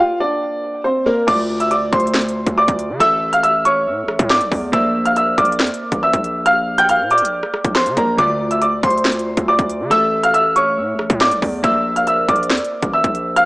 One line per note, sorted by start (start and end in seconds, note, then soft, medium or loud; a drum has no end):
0.00 1.02 A#3 medium
0.00 0.18 F4 medium
0.00 1.02 A#4 medium
0.00 1.02 C5 medium
0.00 1.03 D5 medium
0.00 0.18 F5 medium
0.20 0.81 D4 medium
0.20 0.81 D5 medium
0.84 1.04 C4 medium
0.84 1.03 C5 medium
1.06 1.28 A#3 soft
1.06 1.26 A#3 medium
1.06 1.28 A#4 medium
1.06 1.25 A#4 medium
1.06 1.28 C5 soft
1.06 1.28 D5 medium
1.27 1.90 D2 loud
1.27 2.97 D3 medium
1.27 2.97 A3 medium
1.27 2.97 F4 medium
1.27 1.59 D5 medium
1.27 2.98 D5 medium
1.27 1.58 D6 loud
1.27 kick loud
1.27 closed hi-hat medium
1.27 crash loud
1.60 1.70 E5 medium
1.60 1.70 E6 medium
1.60 closed hi-hat medium
1.71 1.90 D5 medium
1.71 1.90 D6 medium
1.71 closed hi-hat medium
1.93 2.44 D2 loud
1.93 2.54 C5 medium
1.93 2.53 C6 medium
1.93 kick loud
1.93 closed hi-hat medium
2.00 closed hi-hat medium
2.07 closed hi-hat medium
2.14 snare loud
2.14 clap medium
2.14 closed hi-hat medium
2.21 closed hi-hat medium
2.29 closed hi-hat medium
2.47 2.67 D2 loud
2.47 kick loud
2.47 closed hi-hat medium
2.58 2.98 D5 medium
2.58 2.98 D6 medium
2.68 2.91 D2 loud
2.68 kick loud
2.68 closed hi-hat medium
2.79 closed hi-hat medium
2.90 3.00 D3 loud
2.99 3.88 A1 loud
2.99 4.69 A3 medium
2.99 4.70 A4 medium
2.99 3.31 E5 medium
2.99 4.70 E5 medium
2.99 3.31 E6 loud
2.99 closed hi-hat medium
3.33 3.43 F5 medium
3.33 3.42 F6 medium
3.33 closed hi-hat medium
3.43 3.63 E5 medium
3.43 3.62 E6 medium
3.43 closed hi-hat medium
3.65 4.27 C#5 medium
3.65 4.26 C#6 medium
3.65 closed hi-hat medium
3.87 4.05 A2 loud
4.03 4.18 A1 loud
4.08 cross-stick medium
4.19 4.42 A2 loud
4.19 kick loud
4.19 closed hi-hat medium
4.30 4.71 D5 medium
4.30 4.71 D6 medium
4.30 snare loud
4.30 clap loud
4.41 4.51 A#1 loud
4.41 closed hi-hat medium
4.52 4.72 E2 loud
4.52 kick loud
4.52 open hi-hat medium
4.72 5.35 A#1 loud
4.72 7.92 A#3 medium
4.72 7.93 A#4 medium
4.72 7.93 C5 medium
4.72 7.93 D5 medium
4.72 5.04 E5 medium
4.72 5.04 E6 loud
4.72 kick loud
4.72 closed hi-hat medium
5.05 5.15 F5 medium
5.05 5.15 F6 medium
5.05 closed hi-hat medium
5.16 5.36 E5 medium
5.16 5.35 E6 medium
5.16 closed hi-hat medium
5.38 5.61 A#1 loud
5.38 5.99 D5 medium
5.38 5.99 D6 medium
5.38 kick loud
5.38 closed hi-hat medium
5.45 closed hi-hat medium
5.52 closed hi-hat medium
5.59 5.70 F2 loud
5.59 snare loud
5.59 clap medium
5.59 closed hi-hat medium
5.67 closed hi-hat medium
5.74 closed hi-hat medium
5.92 6.13 A1 loud
5.92 kick loud
5.92 closed hi-hat medium
6.03 6.44 E5 medium
6.03 6.43 E6 medium
6.13 7.01 A#1 loud
6.13 kick loud
6.13 closed hi-hat medium
6.24 closed hi-hat medium
6.46 6.77 F5 medium
6.46 6.76 F6 medium
6.46 closed hi-hat medium
6.78 6.88 G5 medium
6.78 6.88 G6 medium
6.78 closed hi-hat medium
6.89 7.09 F5 medium
6.89 7.08 F6 medium
6.89 closed hi-hat medium
7.00 7.23 A#2 loud
7.11 7.72 D5 medium
7.11 7.72 D6 medium
7.11 closed hi-hat soft
7.18 7.42 A#1 loud
7.18 closed hi-hat medium
7.25 closed hi-hat medium
7.43 cross-stick medium
7.54 cross-stick medium
7.64 7.88 A#1 loud
7.64 kick loud
7.64 closed hi-hat medium
7.75 7.94 C5 medium
7.75 7.94 C6 medium
7.75 snare loud
7.75 clap loud
7.86 7.96 D3 loud
7.86 closed hi-hat medium
7.96 8.18 A#1 loud
7.96 8.18 A#3 medium
7.96 8.18 A#4 medium
7.96 8.16 A#4 medium
7.96 8.19 C5 soft
7.96 8.18 D5 medium
7.96 8.16 A#5 medium
7.96 kick loud
7.96 closed hi-hat medium
8.17 8.81 D2 loud
8.17 9.87 D3 medium
8.17 9.88 A3 medium
8.17 9.88 F4 medium
8.17 8.49 D5 medium
8.17 9.88 D5 medium
8.17 8.49 D6 loud
8.17 kick loud
8.17 closed hi-hat medium
8.51 8.61 E5 medium
8.51 8.60 E6 medium
8.51 closed hi-hat medium
8.62 8.81 D5 medium
8.62 8.81 D6 medium
8.62 closed hi-hat medium
8.83 9.35 D2 loud
8.83 9.44 C5 medium
8.83 9.44 C6 medium
8.83 kick loud
8.83 closed hi-hat medium
8.90 closed hi-hat medium
8.98 closed hi-hat medium
9.05 snare loud
9.05 clap medium
9.05 closed hi-hat medium
9.12 closed hi-hat medium
9.19 closed hi-hat medium
9.37 9.58 D2 loud
9.37 kick loud
9.37 closed hi-hat medium
9.48 9.89 D5 medium
9.48 9.89 D6 medium
9.59 9.82 D2 loud
9.59 kick loud
9.59 closed hi-hat medium
9.70 closed hi-hat medium
9.80 9.91 D3 loud
9.90 10.79 A1 loud
9.90 11.60 A3 medium
9.90 11.60 A4 medium
9.90 10.22 E5 medium
9.90 11.61 E5 medium
9.90 10.21 E6 loud
9.90 closed hi-hat medium
10.23 10.33 F5 medium
10.23 10.33 F6 medium
10.23 closed hi-hat medium
10.34 10.53 E5 medium
10.34 10.53 E6 medium
10.34 closed hi-hat medium
10.56 11.17 C#5 medium
10.56 11.17 C#6 medium
10.56 closed hi-hat medium
10.77 10.95 A2 loud
10.94 11.09 A1 loud
10.99 cross-stick medium
11.10 11.33 A2 loud
11.10 kick loud
11.10 closed hi-hat medium
11.21 11.62 D5 medium
11.21 11.61 D6 medium
11.21 snare loud
11.21 clap loud
11.31 11.42 A#1 loud
11.31 closed hi-hat medium
11.42 11.63 E2 loud
11.42 kick loud
11.42 open hi-hat medium
11.63 12.26 A#1 loud
11.63 13.45 A#3 medium
11.63 13.45 A#4 medium
11.63 13.45 C5 medium
11.63 13.45 D5 medium
11.63 11.95 E5 medium
11.63 11.94 E6 loud
11.63 kick loud
11.63 closed hi-hat medium
11.96 12.06 F5 medium
11.96 12.06 F6 medium
11.96 closed hi-hat medium
12.07 12.27 E5 medium
12.07 12.26 E6 medium
12.07 closed hi-hat medium
12.28 12.52 A#1 loud
12.28 12.90 D5 medium
12.28 12.89 D6 medium
12.28 kick loud
12.28 closed hi-hat medium
12.36 closed hi-hat medium
12.43 closed hi-hat medium
12.50 12.60 F2 loud
12.50 snare loud
12.50 clap medium
12.50 closed hi-hat medium
12.57 closed hi-hat medium
12.64 closed hi-hat medium
12.82 13.03 A1 loud
12.82 kick loud
12.82 closed hi-hat medium
12.93 13.34 E5 medium
12.93 13.34 E6 medium
13.04 13.45 A#1 loud
13.04 kick loud
13.04 closed hi-hat medium
13.15 closed hi-hat medium
13.36 13.45 F5 medium
13.36 13.45 F6 loud
13.36 closed hi-hat medium